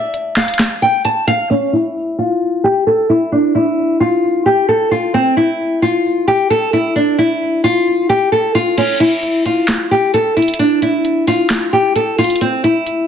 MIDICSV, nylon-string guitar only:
0, 0, Header, 1, 2, 480
1, 0, Start_track
1, 0, Tempo, 454545
1, 1587, Time_signature, 4, 2, 24, 8
1, 13805, End_track
2, 0, Start_track
2, 0, Title_t, "Nylon-string guitar"
2, 0, Program_c, 0, 24
2, 0, Note_on_c, 0, 76, 82
2, 358, Note_off_c, 0, 76, 0
2, 387, Note_on_c, 0, 77, 78
2, 838, Note_off_c, 0, 77, 0
2, 868, Note_on_c, 0, 79, 85
2, 1079, Note_off_c, 0, 79, 0
2, 1107, Note_on_c, 0, 81, 77
2, 1319, Note_off_c, 0, 81, 0
2, 1346, Note_on_c, 0, 77, 87
2, 1559, Note_off_c, 0, 77, 0
2, 1588, Note_on_c, 0, 61, 100
2, 1799, Note_off_c, 0, 61, 0
2, 1826, Note_on_c, 0, 64, 74
2, 2278, Note_off_c, 0, 64, 0
2, 2307, Note_on_c, 0, 65, 76
2, 2758, Note_off_c, 0, 65, 0
2, 2788, Note_on_c, 0, 67, 79
2, 2999, Note_off_c, 0, 67, 0
2, 3028, Note_on_c, 0, 69, 87
2, 3239, Note_off_c, 0, 69, 0
2, 3268, Note_on_c, 0, 64, 77
2, 3480, Note_off_c, 0, 64, 0
2, 3506, Note_on_c, 0, 62, 88
2, 3719, Note_off_c, 0, 62, 0
2, 3748, Note_on_c, 0, 64, 79
2, 4199, Note_off_c, 0, 64, 0
2, 4227, Note_on_c, 0, 65, 79
2, 4679, Note_off_c, 0, 65, 0
2, 4708, Note_on_c, 0, 67, 86
2, 4919, Note_off_c, 0, 67, 0
2, 4948, Note_on_c, 0, 69, 79
2, 5160, Note_off_c, 0, 69, 0
2, 5188, Note_on_c, 0, 65, 81
2, 5399, Note_off_c, 0, 65, 0
2, 5428, Note_on_c, 0, 60, 99
2, 5640, Note_off_c, 0, 60, 0
2, 5669, Note_on_c, 0, 64, 78
2, 6120, Note_off_c, 0, 64, 0
2, 6149, Note_on_c, 0, 65, 70
2, 6599, Note_off_c, 0, 65, 0
2, 6628, Note_on_c, 0, 67, 72
2, 6839, Note_off_c, 0, 67, 0
2, 6868, Note_on_c, 0, 69, 88
2, 7079, Note_off_c, 0, 69, 0
2, 7108, Note_on_c, 0, 64, 86
2, 7319, Note_off_c, 0, 64, 0
2, 7346, Note_on_c, 0, 62, 90
2, 7559, Note_off_c, 0, 62, 0
2, 7587, Note_on_c, 0, 64, 79
2, 8038, Note_off_c, 0, 64, 0
2, 8067, Note_on_c, 0, 65, 79
2, 8518, Note_off_c, 0, 65, 0
2, 8547, Note_on_c, 0, 67, 81
2, 8759, Note_off_c, 0, 67, 0
2, 8786, Note_on_c, 0, 69, 76
2, 8999, Note_off_c, 0, 69, 0
2, 9027, Note_on_c, 0, 65, 81
2, 9239, Note_off_c, 0, 65, 0
2, 9268, Note_on_c, 0, 61, 103
2, 9480, Note_off_c, 0, 61, 0
2, 9506, Note_on_c, 0, 64, 76
2, 9958, Note_off_c, 0, 64, 0
2, 9987, Note_on_c, 0, 65, 74
2, 10438, Note_off_c, 0, 65, 0
2, 10468, Note_on_c, 0, 67, 83
2, 10679, Note_off_c, 0, 67, 0
2, 10708, Note_on_c, 0, 69, 90
2, 10919, Note_off_c, 0, 69, 0
2, 10947, Note_on_c, 0, 64, 78
2, 11159, Note_off_c, 0, 64, 0
2, 11186, Note_on_c, 0, 62, 94
2, 11398, Note_off_c, 0, 62, 0
2, 11427, Note_on_c, 0, 64, 82
2, 11878, Note_off_c, 0, 64, 0
2, 11907, Note_on_c, 0, 65, 79
2, 12358, Note_off_c, 0, 65, 0
2, 12386, Note_on_c, 0, 67, 87
2, 12599, Note_off_c, 0, 67, 0
2, 12626, Note_on_c, 0, 69, 78
2, 12839, Note_off_c, 0, 69, 0
2, 12867, Note_on_c, 0, 65, 83
2, 13079, Note_off_c, 0, 65, 0
2, 13107, Note_on_c, 0, 60, 102
2, 13319, Note_off_c, 0, 60, 0
2, 13348, Note_on_c, 0, 64, 80
2, 13799, Note_off_c, 0, 64, 0
2, 13805, End_track
0, 0, End_of_file